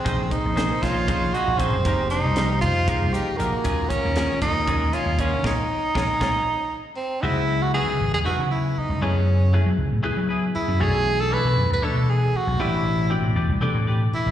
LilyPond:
<<
  \new Staff \with { instrumentName = "Flute" } { \time 7/8 \key bes \minor \tempo 4 = 117 aes'8 c''4 des''4 ees''8 aes'8~ | aes'8 c''4 c''4 ees''8 ges'8~ | ges'8 bes'4 bes'4 des''8 bes'8 | des''8 r8 des''8 des''8 r4. |
\key cis \phrygian r2. r8 | r2. r8 | r2. r8 | r2. r8 | }
  \new Staff \with { instrumentName = "Clean electric guitar" } { \time 7/8 \key bes \minor <des' ees' aes' c''>8 r8 <des' ees' aes' c''>8 <ees' aes' c''>8 <des' ees' aes' c''>8 <ees' aes' c''>8 <des' ees' aes' c''>8 | <aes ees' g' bes'>8 r8 <aes ees' g' bes'>8 r8 <aes ees' g' bes'>8 <ees' g' bes'>8 <aes ees' g' bes'>8 | <ges des' f' aes'>8 r8 <ges des' f' aes'>8 r8 <ges des' f' aes'>8 <des' f' aes'>8 <ges des' f' aes'>8 | <f' aes' bes'>8 r8 <f' aes' bes'>8 <f' aes' bes'>8 r4. |
\key cis \phrygian <dis' fis' b' e''>8 r8 <dis' fis' b' e''>8 r8 <dis' fis' b' e''>8 r4 | <a e' gis' b'>8 r8 <a e' gis' b'>8 r8 <a e' gis' b'>8 <e' gis' b'>8 r8 | <d' e' a' cis''>8 r8 <d' e' a' cis''>8 r8 <d' e' a' cis''>8 r4 | <c' g' b' d''>8 r8 <c' g' b' d''>8 <g' b' d''>8 <c' g' b' d''>8 <g' b' d''>8 r8 | }
  \new Staff \with { instrumentName = "Tenor saxophone" } { \time 7/8 \key bes \minor c'8 ees'4 f'4 ges'8 c'8~ | c'8 ees'4 f'4 g'8 bes8~ | bes8 des'4 ees'4 f'8 des'8 | ees'2. c'8 |
\key cis \phrygian e'8. fis'16 gis'8. gis'16 fis'8 e'8 dis'8 | cis'4 r2 e'8 | gis'8. a'16 b'8. b'16 a'8 gis'8 fis'8 | e'4 r2 e'8 | }
  \new Staff \with { instrumentName = "Reed electric piano" } { \time 7/8 \key bes \minor <c f bes ees' aes'>4 <c f bes ees' bes'>4 <c f bes ees' aes'>4. | <c f bes ees' g'>4 <c f bes ees' g'>4 <c f bes ees' aes'>4. | <bes, ees aes des' f'>4 <bes, ees aes des' f'>4 <bes, ees aes des' ees'>4. | <f aes bes>8 r8 <f aes bes>8 <f aes bes>8 r4. |
\key cis \phrygian <cis fis b e' gis'>4 <cis fis b e' b'>4 <cis fis b e' b'>4. | <cis fis b e' gis'>4 <cis fis b e' gis'>4 <cis fis b e' gis'>4. | <b, e a d' fis'>4 <b, e a d' a'>4 <b, e a d' a'>4. | <b, e a d' g'>4 <b, e a d' fis'>4 <b, e a d' a'>4. | }
  \new Staff \with { instrumentName = "Slap bass" } { \clef bass \time 7/8 \key bes \minor bes,,8 r16 bes,,8 r16 bes,,8 bes,,8 r16 bes,,8 ges,,16 | f,,8. c,8. f,8 f,16 c,16 r8 bes,,16 r16 | ees,8 r16 ees,8 r16 ees,8 ees,8 r16 ees,8 ees16 | bes,,16 r8. bes,,16 r16 bes,,16 r4. r16 |
\key cis \phrygian cis,4~ cis,16 cis16 gis,,16 e,16 r16 cis8. r16 cis,16 | fis,4~ fis,16 fis16 cis,16 a,16 r16 fis8. r16 fis,16 | b,,4~ b,,16 b,16 fis,16 d,16 r16 b,8. r16 b,,16 | a,,4~ a,,16 a,16 e,16 c,16 r16 a,8. r16 a,,16 | }
  \new DrumStaff \with { instrumentName = "Drums" } \drummode { \time 7/8 <hh bd>8 <hh bd>8 <hh sn>8 <hh bd sn>8 <hh bd>8 hh8 <hh bd>8 | <hh bd>8 hh8 <hh sn>8 <hh bd>8 <hh bd>8 hh8 hh8 | <hh bd>8 <hh bd>8 <hh sn>8 <hh bd>8 <hh bd>8 hh8 <hh bd>8 | <bd sn>4 <bd sn>8 <bd sn>8 r4. |
r4 r4 r4. | r4 r4 r4. | r4 r4 r4. | r4 r4 r4. | }
>>